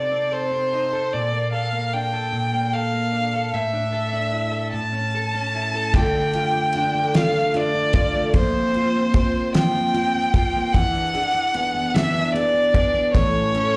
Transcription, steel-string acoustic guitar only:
5.93 6.93 A3 medium
5.93 6.34 F4 medium
6.14 6.53 D4 medium
6.35 6.74 F4 medium
6.54 7.32 D4 medium
6.75 7.14 F4 medium
6.94 7.13 A3 medium
7.14 8.14 A3 medium
7.14 7.54 F4 medium
7.34 7.73 D4 medium
7.54 7.94 F4 medium
7.74 8.42 D4 medium
7.95 8.35 F4 medium
8.15 8.42 A3 medium
8.35 9.54 F3 medium
8.35 8.74 F4 medium
8.55 8.94 C4 medium
8.76 9.14 F4 medium
8.95 9.74 C4 soft
9.15 9.54 F4 medium
9.35 10.55 A#3 medium
9.55 10.75 F3 medium
9.55 9.93 F4 medium
9.75 10.13 C4 medium
9.94 10.34 F4 medium
10.15 10.82 C4 medium
10.35 10.75 F4 medium
10.56 10.83 A#3 medium
10.75 11.94 E3 medium
10.75 11.13 G#4 medium
10.95 11.33 D4 medium
11.14 11.53 G#4 medium
11.34 12.13 D4 medium
11.55 11.93 G#4 medium
11.74 12.93 B3 medium
11.94 13.14 E3 medium
11.94 12.33 G#4 medium
12.14 12.53 D4 medium
12.34 12.72 G#4 medium
12.54 13.22 D4 medium
12.74 13.14 G#4 medium
12.94 13.22 B3 medium
13.14 13.77 E3 medium
13.14 13.54 A4 medium
13.35 13.74 C#4 medium
13.54 13.77 A4 medium

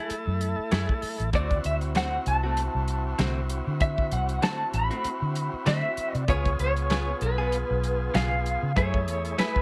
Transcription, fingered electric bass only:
0.10 muted fingered electric bass stroke soft
0.27 0.53 F#2 medium
0.58 muted fingered electric bass stroke soft
0.72 0.86 F#2 medium
1.03 muted fingered electric bass stroke soft
1.20 1.31 A1 medium
1.33 1.60 D2 medium
1.65 2.17 D2 medium
2.26 2.67 C2 medium
2.75 3.12 C2 medium
3.19 3.60 C2 medium
3.67 4.13 D3 medium
4.12 4.38 C2 medium
4.74 4.88 A1 loud
5.04 muted fingered electric bass stroke soft
5.22 5.48 D3 medium
5.53 muted fingered electric bass stroke soft
5.66 5.81 D3 medium
5.97 muted fingered electric bass stroke soft
6.14 6.26 C3 medium
6.28 6.55 C#2 loud
6.59 7.12 C#2 medium
7.21 7.62 B1 medium
7.70 8.08 B1 medium
8.14 8.55 B1 medium
8.63 8.74 C#3 medium
8.76 9.08 F#2 loud
9.08 9.34 E2 medium

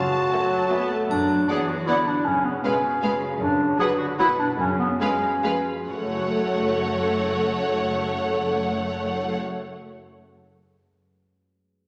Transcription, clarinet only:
1.10 1.46 D4 medium
1.50 1.70 G#4 medium
1.68 1.88 F#4 medium
1.87 2.09 E4 medium
2.07 2.27 D4 medium
2.25 2.46 C#4 medium
2.44 2.63 B3 medium
2.63 3.20 C#4 medium
3.39 3.76 D4 medium
3.80 3.88 G#4 medium
3.98 4.07 F#4 medium
4.19 4.28 E4 medium
4.39 4.48 D4 medium
4.60 4.69 C#4 medium
4.79 4.89 B3 medium
5.00 5.65 C#4 medium
5.89 9.37 F#4 soft

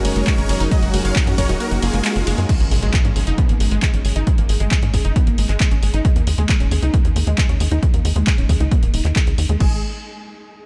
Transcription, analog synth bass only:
0.05 0.13 F#1 loud
0.16 0.24 F#1 medium
0.38 0.46 F#1 medium
0.49 0.57 F#1 loud
0.60 0.68 F#1 loud
0.83 0.91 F#1 medium
0.94 1.02 F#1 loud
1.05 1.13 F#1 medium
1.27 1.35 F#2 medium
1.38 1.46 F#1 loud
1.49 1.57 D#1 loud
1.71 1.79 F#1 medium
1.83 1.91 F#1 loud
1.94 2.02 F#1 medium
2.16 2.24 F#1 medium
2.27 2.35 F#1 loud
2.38 2.46 F#2 medium
2.60 2.68 G#1 medium
2.71 2.79 G#1 loud
2.83 2.91 G#1 medium
3.05 3.13 G#2 medium
3.16 3.24 G#1 loud
3.27 3.35 F#1 medium
3.49 3.57 G#1 medium
3.60 3.68 G#1 loud
3.71 3.79 G#1 medium
3.94 4.02 G#1 medium
4.05 4.13 G#1 loud
4.16 4.24 G#1 medium
4.38 4.46 G#1 medium
4.49 4.57 G#1 loud
4.60 4.68 G#1 medium
4.83 4.91 G#2 medium
4.94 5.02 G#1 loud
5.05 5.13 F#1 medium
5.27 5.35 G#1 medium
5.38 5.46 G#1 loud
5.49 5.57 G#1 medium
5.71 5.79 G#1 medium
5.83 5.91 G#1 loud
5.94 6.02 G#1 medium
6.16 6.24 D#2 medium
6.27 6.35 D#2 loud
6.38 6.46 D#2 medium
6.60 6.68 D#1 medium
6.71 6.79 D#2 loud
6.83 6.91 C#2 medium
7.05 7.13 D#2 medium
7.16 7.24 D#2 loud
7.27 7.35 D#2 medium
7.49 7.57 D#2 medium
7.60 7.68 D#2 loud
7.71 7.79 D#2 medium
7.94 8.02 D#2 medium
8.05 8.13 D#2 loud
8.16 8.24 D#2 medium
8.38 8.46 D#1 medium
8.49 8.57 D#2 loud
8.60 8.68 C#2 medium
8.82 8.90 D#1 medium
8.94 9.02 D#1 medium
9.05 9.13 D#2 medium
9.27 9.35 C#2 medium
9.38 9.46 D#2 loud
9.49 9.57 D#2 medium
9.60 9.81 G#1 loud

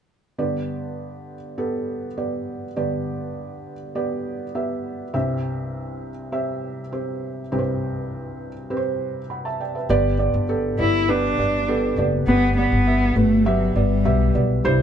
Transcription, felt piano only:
0.38 2.72 G2 soft
0.38 2.72 D3 medium
0.38 1.34 B3 medium
0.38 1.34 G4 medium
0.38 1.34 D5 medium
1.58 2.05 B3 medium
1.58 2.05 G4 medium
1.58 2.05 A4 medium
2.17 2.65 B3 medium
2.17 2.65 G4 soft
2.17 2.65 D5 medium
2.76 5.10 G2 medium
2.76 5.10 D3 medium
2.76 3.72 B3 medium
2.76 3.72 G4 medium
2.76 3.72 D5 medium
3.95 4.43 B3 medium
3.95 4.43 G4 medium
3.95 4.43 D5 medium
4.55 5.02 B3 medium
4.55 5.02 G4 medium
4.55 5.03 E5 medium
5.14 7.48 C2 medium
5.14 7.48 G2 medium
5.14 6.09 C4 medium
5.14 6.09 G4 medium
5.14 6.09 E5 medium
6.32 6.80 C4 medium
6.32 6.80 G4 medium
6.32 6.80 E5 medium
6.92 7.40 C4 medium
6.92 7.40 G4 medium
6.92 7.40 C5 medium
7.52 9.86 C2 medium
7.52 9.86 G2 medium
7.52 8.47 C4 medium
7.52 8.47 G4 medium
7.52 7.58 B4 medium
7.59 8.50 C5 medium
8.70 9.18 C4 medium
8.70 9.18 G4 medium
8.70 8.77 B4 medium
8.77 9.21 C5 medium
9.30 9.45 F#5 soft
9.30 9.44 B5 soft
9.45 9.59 E5 soft
9.45 9.59 A5 medium
9.60 9.74 D5 soft
9.60 9.74 G5 medium
9.75 10.03 B4 soft
9.75 10.03 E5 soft
9.90 10.75 G2 medium
9.90 10.75 D3 medium
9.90 10.13 B3 medium
9.90 10.13 G4 medium
9.90 10.14 D5 loud
10.19 10.43 B3 medium
10.19 10.43 G4 medium
10.19 10.43 D5 medium
10.49 10.73 B3 medium
10.49 10.73 G4 medium
10.49 10.73 A4 medium
10.78 11.02 B3 medium
10.78 11.03 G4 medium
10.78 11.03 D5 medium
11.08 11.32 B3 medium
11.08 11.32 G4 medium
11.08 11.32 B4 medium
11.39 11.62 B3 medium
11.39 11.62 G4 medium
11.39 11.62 D5 medium
11.68 11.92 B3 medium
11.68 11.92 G4 medium
11.68 11.92 A4 medium
11.98 12.22 B3 medium
11.98 12.22 G4 medium
11.98 12.22 D5 medium
12.28 13.13 G2 medium
12.28 13.13 D3 medium
12.28 12.51 B3 medium
12.28 12.51 G4 medium
12.28 12.51 B4 medium
12.58 12.81 B3 medium
12.58 12.81 G4 medium
12.58 12.81 D5 medium
12.87 13.11 B3 medium
12.87 13.11 G4 medium
12.87 13.11 E5 medium
13.16 13.40 B3 medium
13.16 13.40 G4 soft
13.16 13.40 B4 medium
13.46 13.70 B3 medium
13.46 13.70 G4 medium
13.46 13.70 E5 medium
13.76 14.00 B3 medium
13.76 13.99 G4 soft
13.76 14.00 D5 medium
14.05 14.29 B3 medium
14.05 14.29 G4 medium
14.05 14.29 E5 medium
14.35 14.59 B3 medium
14.35 14.59 G4 soft
14.35 14.59 D5 medium
14.64 14.82 G2 medium
14.64 14.82 G3 loud
14.64 14.82 E4 medium
14.64 14.82 C5 loud

